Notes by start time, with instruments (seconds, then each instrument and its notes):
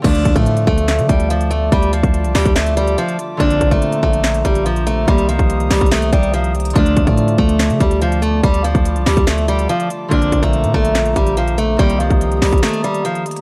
Already playing: harp A#3 C4 G4
0.02 808-style bass D2, harp D3 F3 A3, steel-string acoustic guitar D4, analog synth pad F4 D5 A5 D6, kick, closed hi-hat, crash
0.07 harp F4
0.15 closed hi-hat
0.25 808-style bass D2, kick, closed hi-hat
0.36 808-style bass A2, steel-string acoustic guitar A3, kick, closed hi-hat
0.46 closed hi-hat
0.57 closed hi-hat
0.67 808-style bass D2, steel-string acoustic guitar A3, kick
0.78 closed hi-hat
0.88 snare, clap, closed hi-hat
0.99 808-style bass D3, closed hi-hat
1.09 808-style bass D2, steel-string acoustic guitar G3, kick, closed hi-hat
1.20 closed hi-hat
1.30 steel-string acoustic guitar F3, closed hi-hat
1.41 closed hi-hat
1.51 steel-string acoustic guitar A3, closed hi-hat
1.72 808-style bass D2, steel-string acoustic guitar G3, kick, closed hi-hat
1.83 closed hi-hat
1.93 steel-string acoustic guitar F3, closed hi-hat
2.03 808-style bass D2, kick, closed hi-hat
2.14 closed hi-hat
2.24 808-style bass C2, closed hi-hat
2.35 808-style bass D2, steel-string acoustic guitar G3, snare, clap, open hi-hat
2.45 808-style bass D2, kick, closed hi-hat
2.56 steel-string acoustic guitar A3, snare, clap, closed hi-hat
2.66 closed hi-hat
2.77 steel-string acoustic guitar G3, closed hi-hat
2.87 closed hi-hat
2.98 steel-string acoustic guitar F3, closed hi-hat
3.08 closed hi-hat
3.19 closed hi-hat
3.37 808-style bass A#1, harp A#2 D3 C4, steel-string acoustic guitar D4, analog synth pad C5 A#5, kick, closed hi-hat
3.42 harp F4
3.50 closed hi-hat
3.61 808-style bass A#1, kick, closed hi-hat
3.71 steel-string acoustic guitar A3, kick, closed hi-hat
3.82 closed hi-hat
3.92 closed hi-hat
4.03 808-style bass A#1, steel-string acoustic guitar A3, kick
4.13 closed hi-hat
4.24 snare, clap, closed hi-hat
4.34 closed hi-hat
4.45 808-style bass A#1, steel-string acoustic guitar G3, kick, closed hi-hat
4.55 closed hi-hat
4.66 steel-string acoustic guitar F3, closed hi-hat
4.76 closed hi-hat
4.87 steel-string acoustic guitar A3, closed hi-hat
5.05 808-style bass C2, harp D#3 A#3 C4, steel-string acoustic guitar G3, analog synth pad G4 D#6, kick, closed hi-hat
5.10 harp G4
5.18 closed hi-hat
5.29 steel-string acoustic guitar F3, closed hi-hat
5.39 808-style bass C2, kick, closed hi-hat
5.50 closed hi-hat
5.60 closed hi-hat
5.71 808-style bass C2, steel-string acoustic guitar G3, snare, clap, open hi-hat
5.81 808-style bass C2, kick, closed hi-hat
5.86 closed hi-hat
5.91 steel-string acoustic guitar A3, snare, clap, closed hi-hat
5.97 closed hi-hat
6.02 closed hi-hat
6.13 808-style bass C2, steel-string acoustic guitar G3, kick, closed hi-hat
6.23 closed hi-hat
6.34 steel-string acoustic guitar F3, closed hi-hat
6.44 closed hi-hat
6.55 closed hi-hat
6.60 closed hi-hat
6.65 closed hi-hat
6.70 harp D3, closed hi-hat
6.75 808-style bass D2, harp F3 A3 F4, steel-string acoustic guitar D4, analog synth pad F4 D5 A5 D6, kick, closed hi-hat
6.86 closed hi-hat
6.97 808-style bass D2, kick, closed hi-hat
7.07 808-style bass A2, steel-string acoustic guitar A3, kick, closed hi-hat
7.18 closed hi-hat
7.28 closed hi-hat
7.38 808-style bass D2, steel-string acoustic guitar A3, kick
7.49 closed hi-hat
7.59 snare, clap, closed hi-hat
7.70 808-style bass D3, closed hi-hat
7.80 808-style bass D2, steel-string acoustic guitar G3, kick, closed hi-hat
7.91 closed hi-hat
8.02 steel-string acoustic guitar F3, closed hi-hat
8.12 closed hi-hat
8.22 steel-string acoustic guitar A3, closed hi-hat
8.43 808-style bass D2, steel-string acoustic guitar G3, kick, closed hi-hat
8.54 closed hi-hat
8.64 steel-string acoustic guitar F3, closed hi-hat
8.75 808-style bass D2, kick, closed hi-hat
8.85 closed hi-hat
8.96 808-style bass C2, closed hi-hat
9.06 808-style bass D2, steel-string acoustic guitar G3, snare, clap, open hi-hat
9.17 808-style bass D2, kick, closed hi-hat
9.27 steel-string acoustic guitar A3, snare, clap, closed hi-hat
9.38 closed hi-hat
9.48 steel-string acoustic guitar G3, closed hi-hat
9.59 closed hi-hat
9.69 steel-string acoustic guitar F3, closed hi-hat
9.80 closed hi-hat
9.90 closed hi-hat
10.08 808-style bass A#1, harp A#2 D3 C4, steel-string acoustic guitar D4, analog synth pad C5 A#5, kick, closed hi-hat
10.13 harp F4
10.22 closed hi-hat
10.32 808-style bass A#1, kick, closed hi-hat
10.43 808-style bass A#1, steel-string acoustic guitar A3, kick, closed hi-hat
10.53 closed hi-hat
10.64 808-style bass A#2, closed hi-hat
10.74 808-style bass A#1, steel-string acoustic guitar A3, kick
10.85 closed hi-hat
10.95 snare, clap, closed hi-hat
11.06 closed hi-hat
11.16 808-style bass A#1, steel-string acoustic guitar G3, kick, closed hi-hat
11.27 closed hi-hat
11.37 steel-string acoustic guitar F3, closed hi-hat
11.48 closed hi-hat
11.58 steel-string acoustic guitar A3, closed hi-hat
11.77 808-style bass C2, harp D#3 A#3 C4, steel-string acoustic guitar G3, analog synth pad G4 A#5 D#6, kick, closed hi-hat
11.82 harp G4
11.90 closed hi-hat
12.00 steel-string acoustic guitar F3, closed hi-hat
12.10 808-style bass C2, kick, closed hi-hat
12.21 closed hi-hat
12.32 closed hi-hat
12.42 808-style bass C2, steel-string acoustic guitar G3, snare, clap, open hi-hat
12.52 808-style bass C2, kick, closed hi-hat
12.58 closed hi-hat
12.63 steel-string acoustic guitar A3, snare, clap, closed hi-hat
12.68 closed hi-hat
12.74 closed hi-hat
12.84 steel-string acoustic guitar G3, closed hi-hat
12.94 closed hi-hat
13.05 steel-string acoustic guitar F3, closed hi-hat
13.15 closed hi-hat
13.26 closed hi-hat
13.31 closed hi-hat
13.36 closed hi-hat